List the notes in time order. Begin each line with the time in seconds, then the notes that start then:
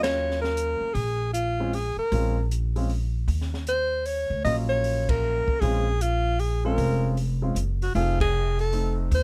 Already playing: D#2 F#3 A#3 C#4 F4
0.03 C#5, snare, ride
0.31 snare
0.41 A#4, snare
0.57 closed hi-hat
0.80 muted upright bass stroke
0.94 A#1 G#4, kick, open hi-hat
1.33 F4, closed hi-hat
1.60 G#3 C4 C#4 F4
1.73 G#4, open hi-hat
1.97 A#4, muted upright bass stroke
2.12 A#1 G#3 C4 C#4 F4, kick, open hi-hat
2.51 closed hi-hat
2.76 G#3 C4 C#4 F4, open hi-hat
2.90 open hi-hat
3.28 D#2, kick, open hi-hat
3.41 snare
3.54 snare
3.67 C5, closed hi-hat
4.06 C#5, open hi-hat
4.30 D2
4.44 A#1 F#3 A#3 C#4 F4 D#5, kick, open hi-hat
4.69 C#5
4.84 open hi-hat
5.09 A#4, kick, ride
5.47 muted upright bass stroke, kick
5.60 A#1 G#3 C4 C#4 F4 G#4, kick, open hi-hat
6.01 F4, closed hi-hat
6.39 G#4, open hi-hat
6.65 G#3 C4 C#4 F4 A#4
6.78 F1, kick, open hi-hat
7.17 open hi-hat
7.42 G#3 C4 C#4 F4
7.55 F#1, closed hi-hat
7.82 F#4, open hi-hat
7.95 F1 A3 C4 D#4 F4 G#4, kick, open hi-hat
8.20 G#4, kick, ride
8.59 A4, open hi-hat
8.73 A3 C4 D#4 A4, open hi-hat
9.11 D#2 C5, kick, open hi-hat